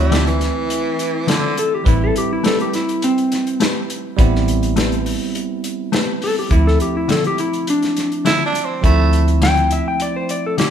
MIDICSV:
0, 0, Header, 1, 7, 480
1, 0, Start_track
1, 0, Tempo, 581395
1, 1535, Time_signature, 4, 2, 24, 8
1, 8836, End_track
2, 0, Start_track
2, 0, Title_t, "Electric slide guitar"
2, 0, Program_c, 0, 29
2, 1312, Note_on_c, 0, 69, 77
2, 1425, Note_off_c, 0, 69, 0
2, 1441, Note_on_c, 0, 67, 62
2, 1542, Note_off_c, 0, 67, 0
2, 1555, Note_on_c, 0, 64, 70
2, 1666, Note_off_c, 0, 64, 0
2, 1681, Note_on_c, 0, 69, 74
2, 1782, Note_off_c, 0, 69, 0
2, 1799, Note_on_c, 0, 67, 72
2, 1909, Note_off_c, 0, 67, 0
2, 1921, Note_on_c, 0, 64, 66
2, 2022, Note_off_c, 0, 64, 0
2, 2035, Note_on_c, 0, 69, 83
2, 2146, Note_off_c, 0, 69, 0
2, 2159, Note_on_c, 0, 67, 73
2, 2261, Note_off_c, 0, 67, 0
2, 2271, Note_on_c, 0, 64, 75
2, 2496, Note_off_c, 0, 64, 0
2, 2510, Note_on_c, 0, 60, 78
2, 2968, Note_off_c, 0, 60, 0
2, 5150, Note_on_c, 0, 69, 83
2, 5264, Note_off_c, 0, 69, 0
2, 5275, Note_on_c, 0, 67, 61
2, 5379, Note_off_c, 0, 67, 0
2, 5384, Note_on_c, 0, 64, 63
2, 5501, Note_off_c, 0, 64, 0
2, 5509, Note_on_c, 0, 69, 76
2, 5616, Note_off_c, 0, 69, 0
2, 5628, Note_on_c, 0, 67, 66
2, 5743, Note_off_c, 0, 67, 0
2, 5753, Note_on_c, 0, 64, 62
2, 5858, Note_off_c, 0, 64, 0
2, 5874, Note_on_c, 0, 69, 78
2, 5987, Note_off_c, 0, 69, 0
2, 6001, Note_on_c, 0, 67, 77
2, 6103, Note_off_c, 0, 67, 0
2, 6109, Note_on_c, 0, 64, 67
2, 6336, Note_off_c, 0, 64, 0
2, 6356, Note_on_c, 0, 62, 76
2, 6813, Note_off_c, 0, 62, 0
2, 7787, Note_on_c, 0, 79, 95
2, 8015, Note_off_c, 0, 79, 0
2, 8028, Note_on_c, 0, 76, 79
2, 8145, Note_off_c, 0, 76, 0
2, 8155, Note_on_c, 0, 79, 73
2, 8261, Note_off_c, 0, 79, 0
2, 8273, Note_on_c, 0, 74, 72
2, 8387, Note_off_c, 0, 74, 0
2, 8391, Note_on_c, 0, 72, 80
2, 8499, Note_off_c, 0, 72, 0
2, 8509, Note_on_c, 0, 74, 77
2, 8625, Note_off_c, 0, 74, 0
2, 8640, Note_on_c, 0, 69, 64
2, 8741, Note_off_c, 0, 69, 0
2, 8744, Note_on_c, 0, 67, 83
2, 8836, Note_off_c, 0, 67, 0
2, 8836, End_track
3, 0, Start_track
3, 0, Title_t, "Clean electric guitar"
3, 0, Program_c, 1, 27
3, 90, Note_on_c, 1, 50, 78
3, 96, Note_on_c, 1, 53, 78
3, 100, Note_on_c, 1, 60, 77
3, 104, Note_on_c, 1, 64, 81
3, 241, Note_off_c, 1, 50, 0
3, 244, Note_off_c, 1, 53, 0
3, 246, Note_off_c, 1, 60, 0
3, 248, Note_off_c, 1, 64, 0
3, 1050, Note_on_c, 1, 50, 79
3, 1055, Note_on_c, 1, 53, 79
3, 1061, Note_on_c, 1, 60, 85
3, 1066, Note_on_c, 1, 64, 87
3, 1201, Note_off_c, 1, 50, 0
3, 1203, Note_off_c, 1, 53, 0
3, 1206, Note_off_c, 1, 60, 0
3, 1209, Note_off_c, 1, 64, 0
3, 2011, Note_on_c, 1, 57, 64
3, 2018, Note_on_c, 1, 60, 64
3, 2021, Note_on_c, 1, 67, 70
3, 2028, Note_on_c, 1, 71, 69
3, 2161, Note_off_c, 1, 57, 0
3, 2165, Note_off_c, 1, 60, 0
3, 2166, Note_off_c, 1, 67, 0
3, 2169, Note_off_c, 1, 71, 0
3, 2972, Note_on_c, 1, 57, 64
3, 2980, Note_on_c, 1, 60, 72
3, 2983, Note_on_c, 1, 67, 79
3, 2989, Note_on_c, 1, 71, 71
3, 3121, Note_off_c, 1, 57, 0
3, 3125, Note_off_c, 1, 60, 0
3, 3127, Note_off_c, 1, 67, 0
3, 3129, Note_off_c, 1, 71, 0
3, 3931, Note_on_c, 1, 57, 76
3, 3938, Note_on_c, 1, 60, 69
3, 3941, Note_on_c, 1, 67, 74
3, 3945, Note_on_c, 1, 71, 71
3, 4081, Note_off_c, 1, 57, 0
3, 4084, Note_off_c, 1, 60, 0
3, 4086, Note_off_c, 1, 67, 0
3, 4088, Note_off_c, 1, 71, 0
3, 4890, Note_on_c, 1, 57, 83
3, 4895, Note_on_c, 1, 60, 74
3, 4900, Note_on_c, 1, 67, 77
3, 4905, Note_on_c, 1, 71, 85
3, 5041, Note_off_c, 1, 57, 0
3, 5043, Note_off_c, 1, 60, 0
3, 5046, Note_off_c, 1, 67, 0
3, 5048, Note_off_c, 1, 71, 0
3, 5848, Note_on_c, 1, 50, 69
3, 5856, Note_on_c, 1, 53, 63
3, 5859, Note_on_c, 1, 60, 71
3, 5865, Note_on_c, 1, 64, 74
3, 6000, Note_off_c, 1, 50, 0
3, 6004, Note_off_c, 1, 53, 0
3, 6006, Note_off_c, 1, 60, 0
3, 6008, Note_off_c, 1, 64, 0
3, 6809, Note_on_c, 1, 50, 67
3, 6814, Note_on_c, 1, 53, 71
3, 6820, Note_on_c, 1, 60, 71
3, 6824, Note_on_c, 1, 64, 77
3, 6961, Note_off_c, 1, 50, 0
3, 6963, Note_off_c, 1, 53, 0
3, 6966, Note_off_c, 1, 60, 0
3, 6968, Note_off_c, 1, 64, 0
3, 7773, Note_on_c, 1, 50, 67
3, 7778, Note_on_c, 1, 53, 65
3, 7783, Note_on_c, 1, 60, 66
3, 7786, Note_on_c, 1, 64, 78
3, 7923, Note_off_c, 1, 50, 0
3, 7926, Note_off_c, 1, 53, 0
3, 7929, Note_off_c, 1, 60, 0
3, 7930, Note_off_c, 1, 64, 0
3, 8732, Note_on_c, 1, 50, 71
3, 8738, Note_on_c, 1, 53, 67
3, 8742, Note_on_c, 1, 60, 69
3, 8746, Note_on_c, 1, 64, 71
3, 8836, Note_off_c, 1, 50, 0
3, 8836, Note_off_c, 1, 53, 0
3, 8836, Note_off_c, 1, 60, 0
3, 8836, Note_off_c, 1, 64, 0
3, 8836, End_track
4, 0, Start_track
4, 0, Title_t, "Tine electric piano"
4, 0, Program_c, 2, 4
4, 0, Note_on_c, 2, 52, 65
4, 0, Note_on_c, 2, 57, 67
4, 0, Note_on_c, 2, 60, 66
4, 0, Note_on_c, 2, 64, 77
4, 1493, Note_off_c, 2, 52, 0
4, 1497, Note_off_c, 2, 57, 0
4, 1503, Note_off_c, 2, 60, 0
4, 1507, Note_off_c, 2, 64, 0
4, 1520, Note_on_c, 2, 55, 62
4, 1529, Note_on_c, 2, 71, 58
4, 1541, Note_on_c, 2, 60, 52
4, 1551, Note_on_c, 2, 64, 70
4, 3414, Note_off_c, 2, 55, 0
4, 3418, Note_off_c, 2, 71, 0
4, 3424, Note_off_c, 2, 60, 0
4, 3429, Note_off_c, 2, 64, 0
4, 3442, Note_on_c, 2, 55, 78
4, 3449, Note_on_c, 2, 59, 69
4, 3459, Note_on_c, 2, 60, 63
4, 3467, Note_on_c, 2, 64, 73
4, 5336, Note_off_c, 2, 55, 0
4, 5340, Note_off_c, 2, 59, 0
4, 5344, Note_off_c, 2, 60, 0
4, 5348, Note_off_c, 2, 64, 0
4, 5361, Note_on_c, 2, 53, 57
4, 5370, Note_on_c, 2, 57, 55
4, 5379, Note_on_c, 2, 60, 52
4, 5389, Note_on_c, 2, 64, 67
4, 7257, Note_off_c, 2, 53, 0
4, 7261, Note_off_c, 2, 57, 0
4, 7266, Note_off_c, 2, 60, 0
4, 7271, Note_off_c, 2, 64, 0
4, 7279, Note_on_c, 2, 53, 71
4, 7289, Note_on_c, 2, 57, 72
4, 7300, Note_on_c, 2, 60, 66
4, 7307, Note_on_c, 2, 64, 85
4, 8836, Note_off_c, 2, 53, 0
4, 8836, Note_off_c, 2, 57, 0
4, 8836, Note_off_c, 2, 60, 0
4, 8836, Note_off_c, 2, 64, 0
4, 8836, End_track
5, 0, Start_track
5, 0, Title_t, "Tenor saxophone"
5, 0, Program_c, 3, 66
5, 0, Note_on_c, 3, 55, 77
5, 218, Note_off_c, 3, 55, 0
5, 222, Note_on_c, 3, 52, 78
5, 1062, Note_on_c, 3, 50, 90
5, 1074, Note_off_c, 3, 52, 0
5, 1291, Note_off_c, 3, 50, 0
5, 6815, Note_on_c, 3, 64, 90
5, 6971, Note_off_c, 3, 64, 0
5, 6984, Note_on_c, 3, 62, 74
5, 7136, Note_on_c, 3, 60, 64
5, 7149, Note_off_c, 3, 62, 0
5, 7292, Note_off_c, 3, 60, 0
5, 7304, Note_on_c, 3, 57, 84
5, 7655, Note_off_c, 3, 57, 0
5, 8836, End_track
6, 0, Start_track
6, 0, Title_t, "Fingered electric bass"
6, 0, Program_c, 4, 33
6, 0, Note_on_c, 4, 38, 90
6, 398, Note_off_c, 4, 38, 0
6, 1539, Note_on_c, 4, 33, 89
6, 1733, Note_off_c, 4, 33, 0
6, 3456, Note_on_c, 4, 33, 89
6, 4238, Note_off_c, 4, 33, 0
6, 5374, Note_on_c, 4, 38, 89
6, 5570, Note_off_c, 4, 38, 0
6, 7296, Note_on_c, 4, 38, 87
6, 8079, Note_off_c, 4, 38, 0
6, 8836, End_track
7, 0, Start_track
7, 0, Title_t, "Drums"
7, 98, Note_on_c, 9, 42, 73
7, 112, Note_on_c, 9, 38, 98
7, 181, Note_off_c, 9, 42, 0
7, 194, Note_off_c, 9, 38, 0
7, 223, Note_on_c, 9, 42, 36
7, 306, Note_off_c, 9, 42, 0
7, 338, Note_on_c, 9, 42, 51
7, 351, Note_on_c, 9, 38, 30
7, 421, Note_off_c, 9, 42, 0
7, 434, Note_off_c, 9, 38, 0
7, 579, Note_on_c, 9, 42, 68
7, 662, Note_off_c, 9, 42, 0
7, 819, Note_on_c, 9, 42, 58
7, 901, Note_off_c, 9, 42, 0
7, 1058, Note_on_c, 9, 42, 76
7, 1071, Note_on_c, 9, 38, 105
7, 1141, Note_off_c, 9, 42, 0
7, 1154, Note_off_c, 9, 38, 0
7, 1300, Note_on_c, 9, 42, 55
7, 1383, Note_off_c, 9, 42, 0
7, 1538, Note_on_c, 9, 36, 90
7, 1539, Note_on_c, 9, 42, 67
7, 1620, Note_off_c, 9, 36, 0
7, 1622, Note_off_c, 9, 42, 0
7, 1781, Note_on_c, 9, 42, 54
7, 1864, Note_off_c, 9, 42, 0
7, 2018, Note_on_c, 9, 42, 74
7, 2031, Note_on_c, 9, 38, 96
7, 2100, Note_off_c, 9, 42, 0
7, 2114, Note_off_c, 9, 38, 0
7, 2145, Note_on_c, 9, 42, 34
7, 2227, Note_off_c, 9, 42, 0
7, 2258, Note_on_c, 9, 42, 53
7, 2271, Note_on_c, 9, 38, 34
7, 2340, Note_off_c, 9, 42, 0
7, 2354, Note_off_c, 9, 38, 0
7, 2385, Note_on_c, 9, 42, 42
7, 2468, Note_off_c, 9, 42, 0
7, 2496, Note_on_c, 9, 42, 75
7, 2579, Note_off_c, 9, 42, 0
7, 2624, Note_on_c, 9, 42, 39
7, 2707, Note_off_c, 9, 42, 0
7, 2739, Note_on_c, 9, 42, 61
7, 2752, Note_on_c, 9, 38, 32
7, 2821, Note_off_c, 9, 42, 0
7, 2835, Note_off_c, 9, 38, 0
7, 2863, Note_on_c, 9, 42, 41
7, 2946, Note_off_c, 9, 42, 0
7, 2976, Note_on_c, 9, 42, 86
7, 2989, Note_on_c, 9, 38, 107
7, 3058, Note_off_c, 9, 42, 0
7, 3072, Note_off_c, 9, 38, 0
7, 3219, Note_on_c, 9, 42, 65
7, 3301, Note_off_c, 9, 42, 0
7, 3456, Note_on_c, 9, 36, 96
7, 3456, Note_on_c, 9, 42, 78
7, 3538, Note_off_c, 9, 36, 0
7, 3538, Note_off_c, 9, 42, 0
7, 3596, Note_on_c, 9, 38, 33
7, 3679, Note_off_c, 9, 38, 0
7, 3699, Note_on_c, 9, 42, 54
7, 3781, Note_off_c, 9, 42, 0
7, 3821, Note_on_c, 9, 42, 38
7, 3903, Note_off_c, 9, 42, 0
7, 3935, Note_on_c, 9, 42, 77
7, 3948, Note_on_c, 9, 38, 88
7, 4018, Note_off_c, 9, 42, 0
7, 4031, Note_off_c, 9, 38, 0
7, 4062, Note_on_c, 9, 42, 35
7, 4145, Note_off_c, 9, 42, 0
7, 4178, Note_on_c, 9, 46, 64
7, 4261, Note_off_c, 9, 46, 0
7, 4418, Note_on_c, 9, 42, 68
7, 4500, Note_off_c, 9, 42, 0
7, 4656, Note_on_c, 9, 42, 59
7, 4739, Note_off_c, 9, 42, 0
7, 4895, Note_on_c, 9, 42, 73
7, 4908, Note_on_c, 9, 38, 98
7, 4978, Note_off_c, 9, 42, 0
7, 4991, Note_off_c, 9, 38, 0
7, 5133, Note_on_c, 9, 46, 73
7, 5216, Note_off_c, 9, 46, 0
7, 5373, Note_on_c, 9, 42, 65
7, 5374, Note_on_c, 9, 36, 85
7, 5455, Note_off_c, 9, 42, 0
7, 5456, Note_off_c, 9, 36, 0
7, 5513, Note_on_c, 9, 38, 29
7, 5595, Note_off_c, 9, 38, 0
7, 5614, Note_on_c, 9, 42, 51
7, 5696, Note_off_c, 9, 42, 0
7, 5853, Note_on_c, 9, 42, 69
7, 5867, Note_on_c, 9, 38, 91
7, 5936, Note_off_c, 9, 42, 0
7, 5949, Note_off_c, 9, 38, 0
7, 5979, Note_on_c, 9, 42, 37
7, 6061, Note_off_c, 9, 42, 0
7, 6095, Note_on_c, 9, 42, 55
7, 6177, Note_off_c, 9, 42, 0
7, 6220, Note_on_c, 9, 42, 38
7, 6303, Note_off_c, 9, 42, 0
7, 6335, Note_on_c, 9, 42, 72
7, 6418, Note_off_c, 9, 42, 0
7, 6460, Note_on_c, 9, 42, 38
7, 6473, Note_on_c, 9, 38, 33
7, 6543, Note_off_c, 9, 42, 0
7, 6556, Note_off_c, 9, 38, 0
7, 6576, Note_on_c, 9, 42, 59
7, 6590, Note_on_c, 9, 38, 34
7, 6659, Note_off_c, 9, 42, 0
7, 6672, Note_off_c, 9, 38, 0
7, 6702, Note_on_c, 9, 42, 35
7, 6785, Note_off_c, 9, 42, 0
7, 6816, Note_on_c, 9, 42, 77
7, 6829, Note_on_c, 9, 38, 103
7, 6899, Note_off_c, 9, 42, 0
7, 6912, Note_off_c, 9, 38, 0
7, 7058, Note_on_c, 9, 42, 56
7, 7140, Note_off_c, 9, 42, 0
7, 7296, Note_on_c, 9, 36, 97
7, 7298, Note_on_c, 9, 42, 74
7, 7378, Note_off_c, 9, 36, 0
7, 7380, Note_off_c, 9, 42, 0
7, 7537, Note_on_c, 9, 42, 56
7, 7619, Note_off_c, 9, 42, 0
7, 7660, Note_on_c, 9, 42, 36
7, 7743, Note_off_c, 9, 42, 0
7, 7775, Note_on_c, 9, 42, 81
7, 7788, Note_on_c, 9, 38, 103
7, 7857, Note_off_c, 9, 42, 0
7, 7870, Note_off_c, 9, 38, 0
7, 7900, Note_on_c, 9, 42, 37
7, 7982, Note_off_c, 9, 42, 0
7, 8014, Note_on_c, 9, 42, 62
7, 8096, Note_off_c, 9, 42, 0
7, 8254, Note_on_c, 9, 42, 75
7, 8337, Note_off_c, 9, 42, 0
7, 8496, Note_on_c, 9, 42, 62
7, 8579, Note_off_c, 9, 42, 0
7, 8736, Note_on_c, 9, 42, 84
7, 8750, Note_on_c, 9, 38, 103
7, 8819, Note_off_c, 9, 42, 0
7, 8832, Note_off_c, 9, 38, 0
7, 8836, End_track
0, 0, End_of_file